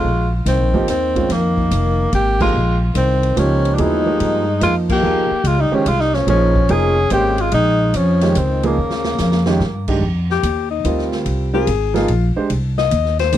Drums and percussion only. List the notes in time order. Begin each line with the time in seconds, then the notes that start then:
0.46 snare, hi-hat pedal, ride
0.74 kick
0.88 snare, hi-hat pedal, ride
1.16 kick, ride
1.30 snare, ride
1.57 kick
1.71 hi-hat pedal, ride
2.13 ride
2.40 kick, crash
2.95 hi-hat pedal, ride
3.23 ride
3.37 hi-hat pedal, ride
3.65 ride
3.78 ride
4.20 ride
4.61 hi-hat pedal, ride
4.89 kick, crash
5.45 hi-hat pedal, ride
5.86 hi-hat pedal, ride
6.00 snare
6.14 snare
6.28 ride
6.56 kick
6.69 ride
7.10 hi-hat pedal, ride
7.38 ride
7.52 ride
7.94 hi-hat pedal, ride
8.21 snare, ride
8.35 hi-hat pedal, ride
8.63 ride
8.90 snare
9.04 snare
9.18 snare, hi-hat pedal
9.32 snare
9.46 snare
9.60 snare
9.88 kick, crash
10.30 snare
10.43 hi-hat pedal, ride
10.85 hi-hat pedal, ride
10.98 snare
11.12 snare
11.26 ride
11.67 hi-hat pedal, ride
11.96 snare, ride
12.08 ride
12.50 ride
12.78 snare
12.91 hi-hat pedal, ride
13.05 snare
13.19 snare, ride
13.32 hi-hat pedal, ride